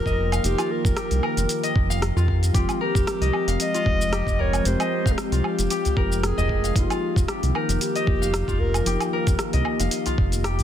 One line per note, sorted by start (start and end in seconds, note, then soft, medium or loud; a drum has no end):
0.00 2.51 D#3 medium
0.00 0.42 F3 medium
0.00 0.43 A#3 medium
0.00 2.51 A#3 medium
0.00 0.45 D#4 medium
0.00 0.42 F4 medium
0.00 0.58 F4 loud
0.00 2.51 F4 medium
0.00 0.46 G4 medium
0.00 0.97 G4 loud
0.00 0.44 A#4 loud
0.00 1.22 A#4 loud
0.00 0.32 F5 medium
0.00 6.72 G5 medium
0.06 0.40 F1 loud
0.06 1.63 D#5 loud
0.06 kick medium
0.06 shaker soft
0.32 1.90 F5 loud
0.32 open hi-hat soft
0.32 low woodblock medium
0.32 shaker medium
0.42 0.56 F1 loud
0.42 1.72 F3 medium
0.42 1.73 A#3 medium
0.42 1.73 D#4 medium
0.42 0.73 G4 loud
0.42 1.74 G4 medium
0.42 open hi-hat medium
0.42 shaker medium
0.58 2.16 F4 loud
0.58 open hi-hat soft
0.58 low woodblock medium
0.58 shaker soft
0.71 1.76 A#4 loud
0.84 0.94 F1 medium
0.84 kick loud
0.84 shaker medium
0.97 2.54 G4 loud
0.97 cross-stick loud
0.97 open hi-hat medium
0.97 shaker medium
1.11 1.21 C2 medium
1.11 open hi-hat soft
1.11 shaker soft
1.23 2.80 A#4 loud
1.23 low woodblock medium
1.37 1.47 F1 medium
1.37 open hi-hat soft
1.37 shaker medium
1.49 open hi-hat medium
1.49 shaker medium
1.63 3.21 D#5 loud
1.63 open hi-hat soft
1.63 shaker soft
1.75 2.12 F1 medium
1.75 kick loud
1.90 3.48 F5 loud
1.90 shaker medium
2.02 cross-stick medium
2.02 open hi-hat medium
2.02 shaker medium
2.16 2.51 F2 medium
2.16 3.74 F4 loud
2.16 shaker soft
2.28 kick medium
2.43 open hi-hat soft
2.43 shaker medium
2.52 2.66 F1 loud
2.52 3.82 F3 medium
2.52 6.71 F3 medium
2.52 3.83 G#3 medium
2.52 6.71 G#3 medium
2.52 6.71 C4 medium
2.52 3.84 C4 medium
2.52 2.79 F4 medium
2.52 4.12 G4 loud
2.52 3.84 G4 medium
2.52 kick loud
2.52 open hi-hat medium
2.52 shaker medium
2.69 open hi-hat soft
2.69 low woodblock medium
2.69 shaker soft
2.81 3.56 G4 loud
2.81 4.39 A#4 loud
2.95 3.05 F1 loud
2.95 kick loud
2.95 shaker medium
3.07 cross-stick loud
3.07 open hi-hat medium
3.07 shaker medium
3.21 3.31 C2 medium
3.21 4.79 D#5 loud
3.21 open hi-hat soft
3.21 shaker soft
3.33 low woodblock medium
3.47 3.57 F1 medium
3.47 5.05 F5 loud
3.47 open hi-hat soft
3.47 shaker medium
3.60 4.42 D#5 loud
3.60 open hi-hat medium
3.60 shaker medium
3.74 5.32 F4 loud
3.74 open hi-hat soft
3.74 shaker soft
3.84 4.22 F1 medium
3.84 4.61 F3 medium
3.84 4.62 G#3 medium
3.84 4.62 C4 medium
3.84 kick loud
3.84 udu medium
3.88 4.63 F4 medium
4.01 shaker medium
4.13 5.70 G4 loud
4.13 cross-stick medium
4.13 open hi-hat medium
4.13 shaker medium
4.26 4.61 F1 loud
4.26 kick medium
4.26 shaker soft
4.39 5.97 A#4 medium
4.39 4.68 C#5 loud
4.39 udu medium
4.53 open hi-hat soft
4.53 low woodblock medium
4.53 shaker medium
4.63 4.76 F1 loud
4.63 5.93 F3 medium
4.63 5.94 G#3 medium
4.63 5.94 C4 medium
4.63 5.13 C5 loud
4.63 open hi-hat medium
4.63 shaker medium
4.67 5.95 G4 medium
4.80 6.37 D#5 loud
4.80 open hi-hat soft
4.80 low woodblock medium
4.80 shaker soft
5.06 5.15 F1 loud
5.06 6.64 F5 loud
5.06 kick loud
5.06 shaker medium
5.12 5.21 G#4 medium
5.18 6.24 G4 loud
5.18 cross-stick loud
5.18 open hi-hat medium
5.18 shaker medium
5.32 5.41 C2 medium
5.32 6.90 F4 loud
5.32 open hi-hat soft
5.32 shaker soft
5.44 low woodblock medium
5.59 5.68 F1 medium
5.59 open hi-hat soft
5.59 shaker medium
5.70 7.28 G4 loud
5.70 open hi-hat medium
5.70 shaker medium
5.85 open hi-hat soft
5.85 udu medium
5.85 shaker soft
5.95 6.33 F1 medium
5.95 6.72 F3 medium
5.95 6.73 G#3 medium
5.95 6.73 C4 medium
5.95 7.54 A#4 loud
5.95 kick loud
6.00 6.74 F4 medium
6.12 shaker medium
6.23 6.73 G#4 loud
6.23 cross-stick medium
6.23 open hi-hat medium
6.23 shaker medium
6.38 6.72 F1 loud
6.38 7.95 D#5 loud
6.38 udu medium
6.38 shaker soft
6.49 kick medium
6.64 8.21 F5 loud
6.64 open hi-hat soft
6.64 shaker medium
6.74 6.87 F1 loud
6.74 10.63 D#3 medium
6.74 8.04 F3 medium
6.74 8.04 A#3 medium
6.74 10.63 A#3 medium
6.74 8.05 D#4 medium
6.74 10.63 F4 medium
6.74 7.25 F4 medium
6.74 10.63 G4 medium
6.74 kick loud
6.74 open hi-hat medium
6.74 shaker medium
6.78 8.06 G4 medium
6.90 8.48 F4 loud
6.90 open hi-hat soft
6.90 low woodblock medium
6.90 shaker soft
7.16 7.26 F1 loud
7.16 kick medium
7.16 shaker medium
7.28 8.86 G4 loud
7.28 cross-stick loud
7.28 open hi-hat medium
7.28 shaker medium
7.43 7.52 C2 medium
7.43 open hi-hat soft
7.43 shaker soft
7.55 7.83 D#4 medium
7.55 9.13 A#4 loud
7.55 low woodblock medium
7.69 7.78 F1 medium
7.69 open hi-hat soft
7.69 shaker medium
7.81 8.61 G4 loud
7.81 open hi-hat medium
7.81 shaker medium
7.95 9.53 D#5 loud
7.95 open hi-hat soft
7.95 shaker soft
8.05 8.43 F1 medium
8.05 8.82 F3 medium
8.05 8.83 A#3 medium
8.05 8.84 D#4 medium
8.05 8.84 F4 medium
8.05 kick loud
8.05 udu medium
8.22 9.80 F5 loud
8.22 shaker medium
8.34 cross-stick loud
8.34 open hi-hat medium
8.34 shaker soft
8.48 8.82 F1 loud
8.48 10.06 F4 loud
8.48 kick medium
8.48 shaker soft
8.59 9.12 A#4 loud
8.59 udu medium
8.74 open hi-hat soft
8.74 low woodblock medium
8.74 shaker medium
8.84 8.97 F1 loud
8.84 10.14 F3 medium
8.84 10.15 A#3 medium
8.84 10.15 D#4 medium
8.84 10.44 G4 loud
8.84 10.16 G4 medium
8.84 open hi-hat medium
8.84 shaker medium
9.00 open hi-hat soft
9.00 low woodblock medium
9.00 shaker soft
9.13 10.63 A#4 loud
9.27 9.36 F1 loud
9.27 kick medium
9.27 open hi-hat soft
9.27 shaker medium
9.39 cross-stick loud
9.39 open hi-hat medium
9.39 shaker medium
9.53 9.63 C2 medium
9.53 10.63 D#5 loud
9.53 open hi-hat soft
9.53 udu medium
9.53 shaker soft
9.65 low woodblock medium
9.79 9.89 F1 medium
9.79 10.63 F5 loud
9.79 open hi-hat soft
9.79 shaker medium
9.91 open hi-hat medium
9.91 shaker medium
10.06 10.63 F4 loud
10.06 open hi-hat soft
10.06 udu medium
10.06 shaker soft
10.18 10.60 F1 medium
10.18 kick loud
10.32 open hi-hat soft
10.32 shaker medium
10.44 10.63 G4 loud
10.44 cross-stick loud
10.44 open hi-hat medium
10.44 shaker medium
10.59 10.63 C2 loud
10.59 open hi-hat soft
10.59 udu medium
10.59 shaker soft